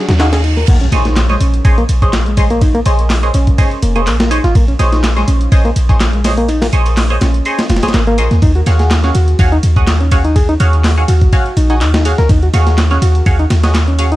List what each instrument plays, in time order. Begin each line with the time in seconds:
Already playing: reverse cymbal
0.09 808-style bass D#2, reed electric piano F#4, snare, ride
0.19 reed electric piano D#4, synth stab F#4 G#4 C#5 F5, snare, clap, ride
0.33 reed electric piano G#4, snare, ride
0.44 reed electric piano D#4, ride
0.57 reed electric piano A#4, snare
0.68 808-style bass A#1, reed electric piano A#3, kick, closed hi-hat, crash, ride, impact
0.81 reed electric piano C#4, closed hi-hat
0.92 808-style bass A#1, synth stab G#4 C5 C#5 D#5, snare, closed hi-hat, ride
1.05 reed electric piano D#4, snare, closed hi-hat
1.16 snare, clap, closed hi-hat, ride
1.29 reed electric piano G#3, synth stab G#4 C5 C#5 D#5, snare, closed hi-hat
1.41 808-style bass A#1, reed electric piano C#4, closed hi-hat, ride
1.54 closed hi-hat
1.65 808-style bass A#1, synth stab G#4 C5 C#5 D#5, kick, closed hi-hat, ride
1.78 reed electric piano A#3, closed hi-hat
1.89 808-style bass A#1, closed hi-hat, ride
2.02 synth stab G#4 C5 C#5 D#5, kick, closed hi-hat
2.13 snare, clap, closed hi-hat, ride
2.26 reed electric piano G#3, closed hi-hat
2.37 synth stab G#4 C5 C#5 D#5, kick, closed hi-hat, ride
2.50 reed electric piano A#3, closed hi-hat
2.61 reed electric piano D#4, kick, closed hi-hat, ride
2.75 reed electric piano A#3, closed hi-hat
2.86 808-style bass A#1, synth stab G#4 C5 C#5 D#5, closed hi-hat, ride
2.99 closed hi-hat
3.10 snare, clap, closed hi-hat, open hi-hat
3.23 synth stab G#4 C5 C#5 D#5, closed hi-hat
3.34 808-style bass A#1, reed electric piano C#4, closed hi-hat, ride
3.47 kick, closed hi-hat
3.58 synth stab G#4 C5 C#5 D#5, kick, closed hi-hat, ride
3.71 closed hi-hat
3.82 808-style bass F1, reed electric piano A#3, closed hi-hat, ride
3.95 reed electric piano A#3, synth stab G#4 C5 C#5 D#5, closed hi-hat
4.07 808-style bass A#1, reed electric piano A#3, clap, closed hi-hat, ride
4.20 reed electric piano A#3, snare, closed hi-hat
4.31 reed electric piano D#4, synth stab G#4 C5 C#5 D#5, closed hi-hat, ride
4.44 808-style bass G#1, reed electric piano F4, snare, closed hi-hat
4.55 808-style bass A#1, reed electric piano A#3, kick, closed hi-hat, ride
4.68 reed electric piano C#4, closed hi-hat
4.79 808-style bass A#1, synth stab G#4 C5 C#5 D#5, snare, closed hi-hat, ride
4.92 reed electric piano D#4, snare, closed hi-hat
5.04 snare, clap, closed hi-hat, ride
5.16 reed electric piano G#3, synth stab G#4 C5 C#5 D#5, snare, closed hi-hat
5.28 808-style bass A#1, reed electric piano C#4, closed hi-hat, ride
5.41 closed hi-hat
5.52 808-style bass A#1, synth stab G#4 C5 C#5 D#5, kick, closed hi-hat, ride
5.65 reed electric piano A#3, closed hi-hat
5.76 808-style bass A#1, closed hi-hat, ride
5.89 synth stab G#4 C5 C#5 D#5, kick, closed hi-hat
6.00 snare, clap, closed hi-hat, ride
6.13 reed electric piano G#3, closed hi-hat
6.24 synth stab G#4 C5 C#5 D#5, snare, closed hi-hat, open hi-hat
6.37 reed electric piano A#3, closed hi-hat
6.48 reed electric piano D#4, closed hi-hat, ride
6.62 reed electric piano A#3, snare, closed hi-hat, open hi-hat
6.73 808-style bass A#1, synth stab G#4 C5 C#5 D#5, closed hi-hat
6.86 closed hi-hat, ride
6.97 snare, clap, closed hi-hat, open hi-hat
7.10 synth stab G#4 C5 C#5 D#5, closed hi-hat
7.21 808-style bass A#1, reed electric piano C#4, snare, closed hi-hat, ride
7.34 closed hi-hat
7.45 synth stab G#4 C5 C#5 D#5, closed hi-hat, ride
7.58 snare, closed hi-hat, ride
7.70 808-style bass F1, reed electric piano F4, snare, closed hi-hat, ride
7.76 snare, ride
7.83 808-style bass G#1, reed electric piano G#4, synth stab G#4 C5 C#5 D#5, snare, closed hi-hat, ride
7.88 snare, ride
7.94 808-style bass G#1, reed electric piano A#3, snare, clap, closed hi-hat, ride
8.07 reed electric piano A#3, closed hi-hat
8.18 808-style bass A#1, synth stab G#4 C5 C#5 D#5, reed electric piano A#4, closed hi-hat, ride
8.31 808-style bass D#2, reed electric piano A#3, snare, closed hi-hat
8.42 808-style bass D#2, reed electric piano D#4, kick, closed hi-hat, ride
8.55 reed electric piano F#4, closed hi-hat
8.66 808-style bass D#2, synth stab F#4 G#4 C#5 F5, snare, closed hi-hat, ride
8.79 reed electric piano G#4, snare, closed hi-hat
8.90 snare, clap, closed hi-hat, ride
9.04 reed electric piano C#4, synth stab F#4 G#4 C#5 F5, snare, closed hi-hat
9.15 808-style bass D#2, reed electric piano F#4, closed hi-hat, ride
9.28 closed hi-hat
9.39 808-style bass D#2, synth stab F#4 G#4 C#5 F5, kick, closed hi-hat, ride
9.52 reed electric piano D#4, closed hi-hat
9.63 808-style bass D#2, closed hi-hat, ride
9.76 synth stab F#4 G#4 C#5 D#5, kick, closed hi-hat
9.87 snare, clap, closed hi-hat, ride
10.00 reed electric piano C#4, closed hi-hat
10.11 synth stab F#4 G#4 C#5 F5, kick, closed hi-hat, ride
10.24 reed electric piano D#4, closed hi-hat
10.36 reed electric piano G#4, kick, closed hi-hat, ride
10.49 reed electric piano D#4, closed hi-hat
10.60 808-style bass D#2, synth stab F#4 G#4 C#5 F5, closed hi-hat, ride
10.73 closed hi-hat
10.84 snare, clap, closed hi-hat, open hi-hat
10.97 synth stab F#4 G#4 C#5 F5, closed hi-hat
11.08 808-style bass D#2, reed electric piano F#4, closed hi-hat, ride
11.21 kick, closed hi-hat
11.33 synth stab F#4 G#4 C#5 F5, kick, closed hi-hat, ride
11.46 closed hi-hat
11.57 808-style bass A#1, reed electric piano D#4, closed hi-hat, ride
11.70 reed electric piano D#4, synth stab F#4 G#4 C#5 D#5, closed hi-hat
11.81 808-style bass D#2, reed electric piano D#4, clap, closed hi-hat, ride
11.94 reed electric piano D#4, snare, closed hi-hat
12.05 synth stab F#4 G#4 C#5 F5, reed electric piano G#4, closed hi-hat, ride
12.18 808-style bass C#2, reed electric piano A#4, snare, closed hi-hat
12.29 808-style bass D#2, reed electric piano D#4, kick, closed hi-hat, ride
12.42 reed electric piano F#4, closed hi-hat
12.54 808-style bass D#2, synth stab F#4 G#4 C#5 F5, snare, closed hi-hat, ride
12.67 reed electric piano G#4, snare, closed hi-hat
12.78 snare, clap, closed hi-hat, ride
12.91 reed electric piano C#4, synth stab F#4 G#4 C#5 F5, snare, closed hi-hat
13.02 808-style bass D#2, reed electric piano F#4, closed hi-hat, ride
13.15 closed hi-hat
13.26 808-style bass D#2, synth stab F#4 G#4 C#5 F5, kick, closed hi-hat, ride
13.39 reed electric piano D#4, closed hi-hat
13.50 808-style bass D#2, snare, closed hi-hat, ride
13.63 synth stab F#4 G#4 C#5 D#5, snare, closed hi-hat, ride
13.75 snare, clap, closed hi-hat, ride
13.88 reed electric piano C#4, closed hi-hat
13.99 synth stab F#4 G#4 C#5 F5, closed hi-hat, ride
14.12 reed electric piano D#4, closed hi-hat